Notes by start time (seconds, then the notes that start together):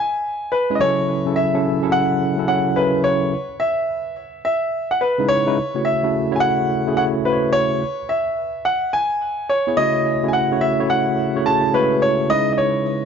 Already playing: G#5
0.52 B4
0.70 G#3 C#4 E4 B4
0.75 D#5
0.80 C#3 F#3 C#4 E4 A4 C#5
1.26 C#3 F#3 C#4 E4 A4
1.36 E5
1.54 C#3 F#3 C#4 E4 A4
1.82 C#3 F#3 C#4 E4 A4
1.92 F#5
2.38 C#3 F#3 C#4 E4 A4
2.48 C#3 F#3 C#4 E4 A4 F#5
2.76 C#3 F#3 C#4 E4 A#4 B4
2.84 B4
3.04 C#5
3.60 E5
4.45 E5
4.91 F#5
5.01 B4
5.19 C#3 G#3 D#4 E4 B4
5.29 C#5
5.47 C#3 G#3 D#4 E4 B4
5.75 C#3 A3 E4 F#4 C#5
5.85 E5
6.03 C#3 A3 E4 F#4 A4
6.31 C#3 A3 E4 F#4 C#5
6.36 G#5
6.40 F#5
6.87 C#3 A3 E4 F#4 G#4
6.97 C#3 A3 E4 F#4 C#5 F#5
7.25 C#3 A3 E4 F#4 B4 C5
7.33 C#5
7.53 C#5
8.09 E5
8.65 F#5
8.93 G#5
9.49 C#5
9.67 B3 E4 G#4 C#5
9.77 C#3 A3 E4 F#4 C#5 D#5
10.23 C#3 A3 E4 F#4 G#4
10.28 G#5
10.33 F#5
10.51 C#3 A3 E4 F#4 C#5
10.61 E5
10.79 C#3 A3 E4 F#4 C#5
10.90 F#5
11.35 C#3 A3 E4 F#4 C#5
11.46 C#3 A3 E4 F#4 G#4 A5
11.74 C#3 G#3 E4 F#4 B4 C#5
11.80 A3
12.02 C#5
12.29 C#3 G#3 D#4 E4 B4 D#5
12.53 D#5
12.58 C#5